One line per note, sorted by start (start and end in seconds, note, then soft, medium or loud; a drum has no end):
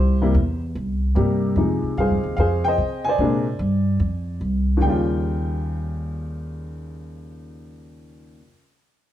0.00 0.33 C2 medium
0.00 0.21 E4 medium
0.00 0.58 G4 medium
0.00 0.58 C5 medium
0.22 0.34 C3 medium
0.22 0.34 G3 medium
0.22 0.34 A#3 medium
0.22 0.34 E4 medium
0.34 0.74 E2 medium
0.75 1.15 C2 medium
1.15 1.55 G2 medium
1.15 1.56 C3 medium
1.15 1.57 G3 medium
1.15 1.57 A#3 medium
1.15 1.57 G4 medium
1.56 1.81 F2 medium
1.56 2.71 C3 soft
1.56 2.71 F3 soft
1.56 2.71 G#3 soft
1.56 2.71 D#4 medium
1.83 muted upright bass stroke soft
1.97 2.12 G2 medium
1.97 2.38 G#4 medium
1.97 2.38 C5 medium
1.97 2.35 F5 medium
2.10 2.23 F2 soft
2.24 2.37 D#2 medium
2.37 2.77 F2 medium
2.37 3.16 G#4 medium
2.37 2.67 C5 medium
2.37 2.65 F5 medium
2.64 3.07 C5 medium
2.64 3.17 D#5 medium
2.64 3.07 G5 medium
2.78 3.18 C3 medium
3.05 4.37 G#5 medium
3.09 4.39 C5 medium
3.09 4.39 D5 medium
3.18 3.58 A#2 medium
3.18 3.44 C3 medium
3.18 3.44 G#3 medium
3.18 3.44 A#3 medium
3.18 3.44 D4 medium
3.59 3.99 G2 medium
4.00 4.40 F2 medium
4.41 4.80 C2 medium
4.77 8.37 D#2 medium
4.77 8.36 D#2 medium
4.81 8.41 C#3 medium
4.81 8.37 G5 medium
4.85 8.45 G3 medium
4.89 8.49 F4 medium